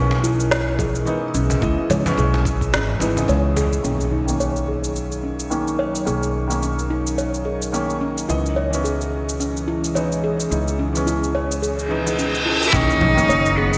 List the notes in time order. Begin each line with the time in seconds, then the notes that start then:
Already playing: B1 B2 E3 B3 C#4 D#4 A#4
0.06 E3
0.11 cajon slap
0.24 E4, cabasa
0.40 cabasa
0.51 C#5, snare, cabasa
0.56 G#3
0.79 G#4, kick, low conga, cabasa
0.84 G#4
0.95 cabasa
1.05 E3 B3 D#4, cabasa
1.28 C#4
1.34 B1 C#4, cajon slap, cabasa
1.50 cajon bass, cabasa
1.61 C#2 E3 B3 E4 D#5, kick, cabasa
1.90 C#2 C#5, low conga, cabasa
2.04 E3 B3, cajon bass, low conga, cabasa
2.08 C#4
2.17 B1 G#4, cajon slap, cabasa
2.34 cajon slap
2.45 kick, cabasa
2.61 kick, cabasa
2.73 G#1 C#4, snare, cabasa
3.00 G#1 E3 B3 D#4 E4, cajon slap, cabasa
3.15 E3 B3, cajon bass, cabasa
3.19 D#5
3.28 C#2 C#5, cajon slap, cabasa
3.56 G#4, cajon bass, cabasa
3.73 cabasa
3.83 B1 D#3 A#3 C#4, impact, cabasa
4.01 F#3, cabasa
4.12 D#4
4.26 D#3 A#3 C#4, cabasa
4.40 C#5, cabasa
4.54 D#4, cabasa
4.68 G#4
4.84 A#4, cabasa
4.96 cabasa
5.12 cabasa
5.23 C#4
5.40 cabasa
5.50 D#3 A#3 C#4 D#4, cabasa
5.68 cabasa
5.79 C#5
5.95 cabasa
6.05 B1 D#3 A#3 C#4 G#4, cabasa
6.23 cabasa
6.48 D#3 A#3, cabasa
6.52 C#4
6.62 C#4, cabasa
6.79 cabasa
6.90 D#4
7.07 cabasa
7.18 C#5, cabasa
7.34 cabasa
7.45 G#4
7.62 cabasa
7.72 D#3 A#3 C#4, cabasa
7.90 cabasa
8.01 C#4
8.18 cabasa
8.28 C#2 B2 E3 B3 E4 D#5, cabasa
8.46 cabasa
8.52 E3
8.56 C#5
8.70 E3 B3 C#4, cabasa
8.74 C#4
8.80 G#3
8.84 G#4, cabasa
9.01 cabasa
9.29 cabasa
9.39 C#4 G#4, cabasa
9.57 cabasa
9.68 E4
9.84 cabasa
9.95 E3 B3 D#4 C#5, cabasa
10.12 cabasa
10.24 G#4
10.40 cabasa
10.50 C#2 E3 B3 D#4, cabasa
10.68 cabasa
10.79 C#4
10.93 E3 B3, cabasa
10.97 C#4
11.07 E4, cabasa
11.24 cabasa
11.35 C#5
11.52 cabasa
11.62 G#4, reverse cymbal, cabasa
11.79 cabasa
11.89 E3 B3 D#4
12.04 E3 B3 D#4, cabasa
12.19 C#4, cabasa
12.35 cabasa
12.46 E4
12.63 cabasa
12.67 E4
12.73 B1 D#3 A#3 C#4 D#4, kick, impact, cabasa
12.90 cabasa
12.95 F#3
13.00 B1 D#4, low conga
13.15 D#3 A#3 C#4, low conga, cabasa
13.27 F#1 C#5 D#5, cabasa
13.46 cabasa
13.58 B3 G#4
13.73 cabasa